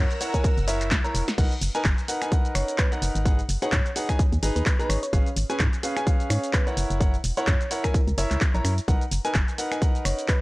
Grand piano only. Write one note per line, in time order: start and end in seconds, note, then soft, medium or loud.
0.21 0.32 E4 medium
0.21 0.32 A#4 medium
0.21 0.32 C#5 medium
0.21 0.32 F#5 loud
0.34 0.44 E4 loud
0.34 0.44 A#4 medium
0.34 0.44 C#5 medium
0.34 0.44 G#5 loud
0.68 0.87 E4 medium
0.68 0.87 A#4 medium
0.68 0.87 C#5 medium
0.68 0.87 E5 loud
1.04 1.22 E4 medium
1.04 1.22 A#4 medium
1.04 1.22 C#5 medium
1.04 1.22 A#5 loud
1.38 1.51 D#4 medium
1.38 1.51 A#4 medium
1.38 1.51 B4 medium
1.38 1.51 F#5 loud
1.75 1.85 D#4 loud
1.75 1.85 A#4 medium
1.75 1.85 B4 medium
1.75 1.85 G#5 loud
2.08 2.20 D#4 medium
2.08 2.20 A#4 medium
2.08 2.20 B4 medium
2.08 2.20 F#5 medium
2.22 2.30 D#4 medium
2.22 2.30 A#4 medium
2.22 2.30 B4 medium
2.22 2.30 G#5 medium
2.32 2.89 D#4 medium
2.32 2.89 A#4 medium
2.32 2.89 B4 medium
2.32 2.89 F#5 loud
2.92 3.23 D#4 medium
2.92 3.23 A#4 medium
2.92 3.23 B4 medium
2.92 3.23 F#5 medium
3.25 3.38 D#4 medium
3.25 3.38 G#4 medium
3.25 3.38 B4 medium
3.25 3.38 F#5 loud
3.62 3.72 D#4 medium
3.62 3.72 G#4 medium
3.62 3.72 B4 medium
3.62 3.72 F#5 loud
3.96 4.07 D#4 medium
3.96 4.07 G#4 medium
3.96 4.07 B4 medium
3.96 4.07 F#5 loud
4.09 4.19 D#4 loud
4.09 4.19 G#4 medium
4.09 4.19 B4 medium
4.09 4.19 G#5 loud
4.43 4.62 D#4 medium
4.43 4.62 G#4 medium
4.43 4.62 B4 medium
4.43 4.62 D#5 loud
4.79 4.97 D#4 medium
4.79 4.97 G#4 medium
4.79 4.97 B4 medium
4.79 4.97 A#5 medium
5.13 5.26 C#4 medium
5.13 5.26 G#4 medium
5.13 5.26 B4 medium
5.13 5.26 F5 loud
5.50 5.60 C#4 loud
5.50 5.60 G#4 medium
5.50 5.60 B4 medium
5.50 5.60 G#5 loud
5.83 5.95 C#4 medium
5.83 5.95 G#4 medium
5.83 5.95 B4 medium
5.83 5.95 F5 loud
5.96 6.05 C#4 medium
5.96 6.05 G#4 medium
5.96 6.05 B4 medium
5.96 6.05 G#5 medium
6.07 6.64 C#4 medium
6.07 6.64 G#4 medium
6.07 6.64 B4 medium
6.07 6.64 F5 loud
6.67 6.98 E4 medium
6.67 6.98 A#4 medium
6.67 6.98 C#5 medium
6.67 6.98 F#5 medium
7.00 7.13 E4 medium
7.00 7.13 A#4 medium
7.00 7.13 C#5 medium
7.00 7.13 F#5 loud
7.37 7.47 E4 medium
7.37 7.47 A#4 medium
7.37 7.47 C#5 medium
7.37 7.47 F#5 loud
7.71 7.82 E4 medium
7.71 7.82 A#4 medium
7.71 7.82 C#5 medium
7.71 7.82 F#5 loud
7.84 7.94 E4 loud
7.84 7.94 A#4 medium
7.84 7.94 C#5 medium
7.84 7.94 G#5 loud
8.18 8.37 E4 medium
8.18 8.37 A#4 medium
8.18 8.37 C#5 medium
8.18 8.37 E5 loud
8.54 8.72 E4 medium
8.54 8.72 A#4 medium
8.54 8.72 C#5 medium
8.54 8.72 A#5 medium
8.88 9.01 D#4 medium
8.88 9.01 A#4 medium
8.88 9.01 B4 medium
8.88 9.01 F#5 loud
9.25 9.35 D#4 medium
9.25 9.35 A#4 medium
9.25 9.35 B4 medium
9.25 9.35 G#5 loud
9.58 9.70 D#4 medium
9.58 9.70 A#4 medium
9.58 9.70 B4 medium
9.58 9.70 F#5 medium
9.71 9.80 D#4 medium
9.71 9.80 A#4 medium
9.71 9.80 B4 medium
9.71 9.80 G#5 medium
9.82 10.39 D#4 medium
9.82 10.39 A#4 medium
9.82 10.39 B4 medium
9.82 10.39 F#5 loud